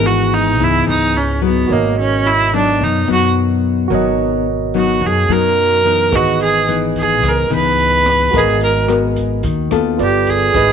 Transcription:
Already playing: upright bass G#1, nylon-string guitar G#2 E3 B3 D#4, tine electric piano B3 E4 G#4
0.06 viola F#4
0.34 viola D#4
0.59 upright bass C#2, nylon-string guitar G#2 E3 B3 D#4
0.64 viola E4
0.87 upright bass C#2, viola D#4
1.17 viola C#4
1.41 nylon-string guitar F#3 B3 D#4, viola B3
1.67 upright bass G#1, nylon-string guitar B2, tine electric piano F#4 A#4 C#5
1.72 viola A#3, tine electric piano D#5
1.99 viola C#4
2.27 viola E4
2.53 nylon-string guitar F#3 B3 D#4, viola D4
2.80 upright bass F#2, nylon-string guitar B2, viola D#4
3.08 upright bass F#2, nylon-string guitar F#3 B3 D#4
3.12 viola F#4
3.88 upright bass G#1, nylon-string guitar B2 F#3 B3 D#4, tine electric piano F#4 A#4
3.92 tine electric piano C#5 D#5
4.74 nylon-string guitar F#3 B3 D#4, viola F#4
5.01 upright bass F#2, nylon-string guitar B2
5.06 viola G#4
5.29 upright bass F#2, nylon-string guitar F#3 B3 D#4
5.33 viola A#4
5.85 nylon-string guitar E3 B3 D#4
6.11 upright bass G#1, nylon-string guitar G#2, tine electric piano G#4 B4 D#5, kick, cross-stick, closed hi-hat
6.15 viola F#4
6.40 viola G#4, closed hi-hat
6.68 nylon-string guitar E3 B3 D#4, closed hi-hat
6.95 viola G#4, kick, closed hi-hat
7.23 upright bass C#2, nylon-string guitar G#2, kick, cross-stick, closed hi-hat
7.28 viola A#4
7.50 upright bass C#2, nylon-string guitar E3 B3 D#4, closed hi-hat
7.55 viola B4
7.78 closed hi-hat
8.06 kick, cross-stick, closed hi-hat
8.31 upright bass G#1, nylon-string guitar G#3 B3 F#4 A#4, tine electric piano F#4 A#4, kick, closed hi-hat
8.36 viola G#4, tine electric piano D#5
8.61 viola A#4, closed hi-hat
8.88 nylon-string guitar B3 F#4 A#4, cross-stick, closed hi-hat
9.16 kick, closed hi-hat
9.43 upright bass D#2, nylon-string guitar D#3, kick, closed hi-hat
9.71 upright bass D#2, nylon-string guitar B3 F4 A4, cross-stick, closed hi-hat
9.97 upright bass G1, tine electric piano F4 A4 B4 D5, closed hi-hat
10.03 viola G4
10.27 viola G#4, kick, closed hi-hat
10.53 upright bass G#1, nylon-string guitar G#3 D#4 E4 B4, tine electric piano G#4 B4 D#5, kick, cross-stick, closed hi-hat

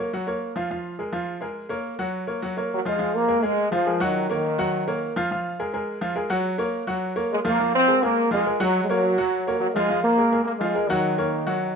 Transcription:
0.00 upright piano C#5
0.13 upright piano F#3 F#4 F#5
0.27 upright piano A#3 A#4 C#5
0.56 upright piano F3 F4 F5
0.71 upright piano F3 F4 F5
0.99 upright piano G#3 G#4 A#4
1.13 upright piano F3 F4 F5
1.41 upright piano G#3 G#4 A#4
1.69 upright piano A#3 A#4 C#5
1.99 upright piano F#3 F#4 F#5
2.27 upright piano A#3 A#4 C#5
2.42 upright piano F#3 F#4 F#5
2.57 upright piano A#3 A#4 C#5
2.73 trombone section F#3
2.85 upright piano F3 F4 F5, trombone section G#3
2.99 upright piano F3 F4 F5
3.15 trombone section A#3
3.28 upright piano G#3 G#4 A#4
3.42 upright piano G#3 G#4 A#4, trombone section G#3
3.72 trombone section F3, upright piano F3 F4 F5
3.87 upright piano G#3 G#4 A#4
4.00 trombone section D#3, upright piano F#3 F#4 F#5
4.30 trombone section D#3, upright piano A#3 A#4 C#5
4.58 upright piano F#3 F#4 F#5
4.88 upright piano A#3 A#4 C#5
5.16 upright piano F3 F4 F5
5.31 upright piano F3 F4 F5
5.60 upright piano G#3 G#4 A#4
5.73 upright piano G#3 G#4 A#4
6.01 upright piano F3 F4 F5
6.16 upright piano G#3 G#4 A#4
6.30 upright piano F#3 F#4 F#5
6.58 upright piano A#3 A#4 C#5
6.87 upright piano F#3 F#4 F#5
7.16 upright piano A#3 A#4 C#5
7.31 trombone section G#3
7.45 upright piano F3 F4 F5, trombone section A#3
7.60 upright piano F3 F4 F5
7.74 trombone section C4
7.88 upright piano G#3 G#4 A#4
8.02 upright piano G#3 G#4 A#4, trombone section A#3
8.31 upright piano F3 F4 F5, trombone section G#3
8.46 upright piano G#3 G#4 A#4
8.60 upright piano F#3 F#4 F#5, trombone section F#3
8.83 trombone section G#3
8.88 trombone section F#3, upright piano A#3 A#4 C#5
9.18 upright piano F#3 F#4 F#5
9.47 upright piano A#3 A#4 C#5
9.59 trombone section F#3
9.74 upright piano F3 F4 F5, trombone section G#3
9.90 upright piano F3 F4 F5
10.02 trombone section A#3
10.17 upright piano G#3 G#4 A#4
10.32 upright piano G#3 G#4 A#4
10.44 trombone section A#3
10.58 upright piano F3 F4 F5, trombone section G#3
10.75 upright piano G#3 G#4 A#4
10.88 trombone section D#3, upright piano F#3 F#4 F#5
11.18 upright piano A#3 A#4 C#5
11.47 upright piano F#3 F#4 F#5

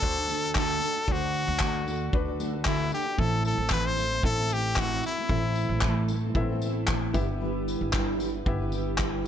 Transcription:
Already playing: steel-string acoustic guitar A3 D4 F#4 A4, felt piano F#4 A4, trumpet A4
0.00 upright bass D2, felt piano D4 F#4 C5, kick
0.15 steel-string acoustic guitar D4 F#4 A4
0.27 steel-string acoustic guitar A3 D4 F#4 A4, tambourine
0.55 steel-string acoustic guitar D3 A3 D4 F#4 A4, trumpet A4, kick, clap
0.81 steel-string acoustic guitar A3 D4 F#4 A4, tambourine
0.95 steel-string acoustic guitar D4 F#4
1.08 upright bass D2, steel-string acoustic guitar D3 A3 D4 F#4 A4, felt piano D4 F#4 C5, kick
1.12 trumpet F#4
1.34 tambourine
1.48 upright bass D2
1.59 steel-string acoustic guitar D3 A3 D4 F#4 A4, kick, clap
1.86 steel-string acoustic guitar A3 D4 F#4 A4, tambourine
2.13 upright bass D2, felt piano D4 F#4 B4, kick
2.25 steel-string acoustic guitar D4 F#4 A4
2.39 steel-string acoustic guitar A3 D4 F#4 A4, tambourine
2.52 steel-string acoustic guitar D4 F#4 A4
2.65 steel-string acoustic guitar D3 A3 D4 F#4 A4, trumpet E4, kick, clap
2.91 steel-string acoustic guitar A3 D4 F#4 A4, trumpet G4, tambourine
3.04 steel-string acoustic guitar D4 F#4 A4
3.17 upright bass A1, steel-string acoustic guitar A2 E3 A3 C4 E4 A4, felt piano C4 E4 A4 E5, trumpet A4, kick
3.45 trumpet A4, tambourine
3.57 upright bass A1, steel-string acoustic guitar A3 C4 E4 A4
3.70 steel-string acoustic guitar A2 E3 A3 C4 E4 A4, trumpet B4, kick, clap
3.86 trumpet C5
3.97 steel-string acoustic guitar A3 C4 E4 A4, tambourine
4.11 steel-string acoustic guitar A3 C4 E4 A4
4.23 upright bass A1, felt piano C4 E4 A4 E5, trumpet A4, kick
4.38 steel-string acoustic guitar A3 C4 E4 A4
4.50 steel-string acoustic guitar A3 C4 E4, trumpet G4, tambourine
4.76 steel-string acoustic guitar A2 E3 A3 C4 E4 A4, trumpet F#4, kick, clap
5.03 steel-string acoustic guitar A3 C4 E4 A4, trumpet E4, tambourine
5.17 steel-string acoustic guitar A3 C4 E4 A4
5.29 upright bass A1, steel-string acoustic guitar A2 E3 A3 C4 E4 A4, felt piano C4 E4 A4 E5, kick
5.55 tambourine
5.69 upright bass A1, steel-string acoustic guitar A3 C4 E4 A4
5.81 steel-string acoustic guitar A2 E3 A3 C4 E4, kick, clap
5.86 steel-string acoustic guitar A4
6.08 steel-string acoustic guitar A3 C4 E4, tambourine
6.13 steel-string acoustic guitar A4
6.24 steel-string acoustic guitar A3 C4 E4 A4
6.34 upright bass A1, felt piano B3 E4 A4 E5, kick
6.41 felt piano C4
6.49 steel-string acoustic guitar A3 C4 E4 A4
6.62 steel-string acoustic guitar A3 C4 E4 A4, tambourine
6.87 steel-string acoustic guitar A2 E3 A3 C4 E4 A4, kick, clap
7.13 upright bass G1, steel-string acoustic guitar G3 E4 G4 B4, felt piano B3 E4 G4 E5, kick, tambourine
7.27 steel-string acoustic guitar E4 G4 B4
7.40 steel-string acoustic guitar G3 E4 G4 B4
7.68 tambourine
7.79 upright bass G1, steel-string acoustic guitar E4 G4 B4
7.93 steel-string acoustic guitar G3 E4 G4 B4, kick, clap
8.19 steel-string acoustic guitar G3 E4 G4 B4, tambourine
8.32 steel-string acoustic guitar E4 G4 B4
8.46 upright bass G1, felt piano B3 E4 G4 E5, kick
8.58 steel-string acoustic guitar E4 G4 B4
8.71 steel-string acoustic guitar G3 E4 G4 B4, tambourine
8.98 steel-string acoustic guitar G3 E4 G4 B4, kick, clap
9.24 steel-string acoustic guitar G3 E4

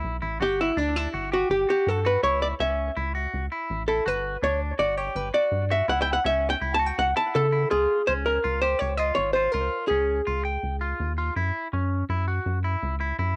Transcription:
Already playing: clean electric guitar E4, hollow-body jazz guitar A4
0.04 analog synth bass B1
0.22 analog synth bass A1, clean electric guitar E4
0.40 analog synth bass G1, clean electric guitar F#4, hollow-body jazz guitar G4
0.61 hollow-body jazz guitar E4
0.77 analog synth bass D2, clean electric guitar D4, hollow-body jazz guitar D4
0.96 hollow-body jazz guitar E4
1.14 analog synth bass G1, clean electric guitar F#4
1.32 hollow-body jazz guitar F#4, clean electric guitar G4
1.50 analog synth bass G1, hollow-body jazz guitar G4
1.69 clean electric guitar F#4, hollow-body jazz guitar G4
1.87 analog synth bass G2, hollow-body jazz guitar A4
2.05 clean electric guitar F#4, hollow-body jazz guitar B4
2.23 analog synth bass C#2, clean electric guitar E4, hollow-body jazz guitar C#5
2.42 hollow-body jazz guitar D5
2.60 analog synth bass C#2, clean electric guitar C#4, hollow-body jazz guitar E5
2.96 analog synth bass C#2, clean electric guitar E4
3.15 clean electric guitar F#4
3.34 analog synth bass C#2
3.52 clean electric guitar E4
3.70 analog synth bass A1
3.88 clean electric guitar E4, hollow-body jazz guitar A4
4.06 analog synth bass G1, clean electric guitar F#4, hollow-body jazz guitar B4
4.43 analog synth bass D2, clean electric guitar D4, hollow-body jazz guitar C#5
4.79 analog synth bass G1, clean electric guitar F#4, hollow-body jazz guitar D5
4.97 clean electric guitar G4, hollow-body jazz guitar C#5
5.15 analog synth bass G1, hollow-body jazz guitar B4
5.34 clean electric guitar F#4, hollow-body jazz guitar D5
5.51 analog synth bass G2
5.70 clean electric guitar F#4, hollow-body jazz guitar E5
5.88 analog synth bass C#2, clean electric guitar E4, hollow-body jazz guitar F#5
6.02 hollow-body jazz guitar G5
6.13 hollow-body jazz guitar F#5
6.24 analog synth bass C#2, clean electric guitar C#4, hollow-body jazz guitar E5
6.50 hollow-body jazz guitar G5
6.61 analog synth bass C#2, clean electric guitar E4
6.74 hollow-body jazz guitar A5
6.79 clean electric guitar F#4
6.86 hollow-body jazz guitar G5
6.98 analog synth bass C#2, hollow-body jazz guitar F#5
7.16 clean electric guitar E4, hollow-body jazz guitar A5
7.35 analog synth bass C#3, hollow-body jazz guitar A4
7.53 clean electric guitar E4
7.71 analog synth bass C#2, clean electric guitar F4, hollow-body jazz guitar G#4
8.07 analog synth bass C#2, clean electric guitar C#4, hollow-body jazz guitar C5
8.26 hollow-body jazz guitar A#4
8.44 analog synth bass C#2, clean electric guitar F4
8.62 clean electric guitar G4, hollow-body jazz guitar C5
8.79 analog synth bass C#2, hollow-body jazz guitar C#5
8.98 clean electric guitar F4, hollow-body jazz guitar D#5
9.15 analog synth bass G#1, hollow-body jazz guitar C#5
9.33 clean electric guitar F4, hollow-body jazz guitar C5
9.52 analog synth bass C#2, clean electric guitar F4, hollow-body jazz guitar A#4
9.88 analog synth bass C#2, clean electric guitar C#4, hollow-body jazz guitar G#4
10.27 analog synth bass C#2, clean electric guitar F4
10.45 clean electric guitar G5
10.63 analog synth bass C#2
10.81 clean electric guitar F4
11.00 analog synth bass D#2
11.18 clean electric guitar F4
11.36 analog synth bass F#2, clean electric guitar E4
11.73 analog synth bass F#2, clean electric guitar C#4
12.09 analog synth bass F#2, clean electric guitar E4
12.28 clean electric guitar F#4
12.46 analog synth bass F#2
12.64 clean electric guitar E4
12.83 analog synth bass C#2
13.00 clean electric guitar E4
13.19 analog synth bass F#2, clean electric guitar E4

